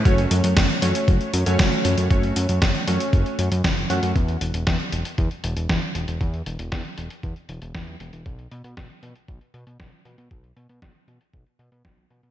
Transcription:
<<
  \new Staff \with { instrumentName = "Electric grand piano" } { \time 4/4 \key fis \minor \tempo 4 = 117 <a cis' fis' cis''>4. <a cis' fis' cis''>4~ <a cis' fis' cis''>16 <a cis' fis' cis''>4~ <a cis' fis' cis''>16 | <a cis' fis' cis''>4. <a cis' fis' cis''>4~ <a cis' fis' cis''>16 r8. <a cis' fis' fis''>8 | r1 | r1 |
r1 | r1 | }
  \new Staff \with { instrumentName = "Analog synth bass" } { \clef bass \time 4/4 \key fis \minor fis,,8 fis,16 fis,16 fis,,16 r16 fis,16 r16 fis,,16 r16 fis,16 fis,16 fis,,16 r16 fis,16 fis,16 | fis,,8 fis,16 fis,16 fis,,16 r16 fis,16 r16 fis,,16 r16 fis,16 fis,16 fis,,8 fis,16 fis,16 | e,8 e,,16 e,,16 e,16 r16 e,,16 r16 e,16 r16 e,,16 e,,16 e,16 r16 e,,16 e,,16 | e,8 e,,16 e,,16 e,16 r16 e,,16 r16 e,16 r16 e,,16 e,,16 e,8 e,,16 e,,16 |
b,,8 b,16 b,16 b,,16 r16 b,16 r16 b,,16 r16 b,16 b,16 b,,16 r16 b,16 b,16 | b,,8 b,16 b,16 b,,16 r16 b,16 r16 b,,16 r16 b,16 b,16 b,,8 b,16 b,16 | }
  \new DrumStaff \with { instrumentName = "Drums" } \drummode { \time 4/4 <hh bd>16 hh16 hh16 hh16 <hh bd sn>16 hh16 hh16 hh16 <hh bd>16 hh16 hh16 hh16 <hh bd sn>16 hh16 hh16 hh16 | <hh bd>16 hh16 hh16 hh16 <hh bd sn>16 hh16 hh16 hh16 <hh bd>16 hh16 hh16 hh16 <hh bd sn>16 hh16 hh16 hh16 | <hh bd>16 hh16 hh16 hh16 <hh bd sn>16 hh16 hh16 hh16 <hh bd>16 hh16 hh16 hh16 <hh bd sn>16 hh16 hh16 hh16 | <hh bd>16 hh16 hh16 hh16 <hh bd sn>16 hh16 hh16 hh16 <hh bd>16 hh16 hh16 hh16 <hh bd sn>16 hh16 hh16 hh16 |
<hh bd>16 hh16 hh16 hh16 <hh bd sn>16 hh16 hh16 hh16 <hh bd>16 hh16 hh16 hh16 <hh bd sn>16 hh16 hh16 hh16 | <hh bd>16 hh16 hh16 hh16 <hh bd sn>16 hh16 hh16 hh16 <hh bd>16 hh16 hh16 hh16 <hh bd sn>16 hh16 hh16 hh16 | }
>>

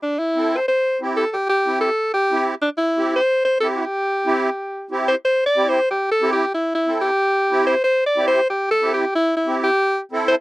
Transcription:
<<
  \new Staff \with { instrumentName = "Alto saxophone" } { \time 4/4 \key c \major \tempo 4 = 184 d'8 e'8~ \tuplet 3/2 { e'4 c''8 } c''4 r8 a'16. a'32 | g'8 g'4 a'4 g'4 r8 | d'8 e'8~ \tuplet 3/2 { e'4 c''8~ } c''8 c''8 a'8 g'8~ | g'2. r8 c''8 |
\tuplet 3/2 { c''4 d''8~ d''8 c''4 g'4 a'8~ a'8 g'4 } | \tuplet 3/2 { e'4 e'8~ } e'16. r32 g'2 c''8 | \tuplet 3/2 { c''4 d''8~ d''8 c''4 g'4 a'8~ a'8 g'4 } | \tuplet 3/2 { e'4 e'8~ } e'16. r32 g'4~ g'32 r8. r32 c''8 | }
  \new Staff \with { instrumentName = "Accordion" } { \time 4/4 \key c \major r4 <c' e' a'>8 r4. <c' e' g'>8 r8 | r4 <c' e' g'>8 r4. <c' e' g'>8 r8 | r4 <c' e' g'>8 r4. <c' e' g'>8 r8 | r4 <c' e' g'>8 r4. <c' e' g'>8 r8 |
r4 <c' e' g'>8 r4. <c' e' g'>8 r8 | r4 <c' e' a'>8 r4. <c' e' g'>8 r8 | r4 <c' e' g'>8 r4. <c' e' g'>8 r8 | r4 <c' e' g'>8 r4. <c' e' a'>8 r8 | }
>>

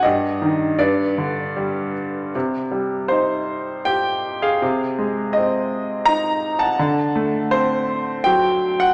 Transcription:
<<
  \new Staff \with { instrumentName = "Grand piano" } { \time 3/4 \key c \minor \tempo 4 = 80 << { ees''4 d''4. r8 | r4 c''4 g''8. f''16~ | f''16 r8. ees''4 bes''8. a''16~ | a''16 r8. c''4 g''8. fis''16 | } \\ { g'4 b'4. r8 | r2 r8. aes'16~ | aes'4~ aes'16 r4. fis''16~ | fis''4~ fis''16 r4. r16 | } >> }
  \new Staff \with { instrumentName = "Grand piano" } { \clef bass \time 3/4 \key c \minor g,8 ees8 g,8 d8 g4 | c8 g8 ees'4 g'4 | c8 aes8 c'4 ees'4 | d8 a8 c'4 fis4 | }
>>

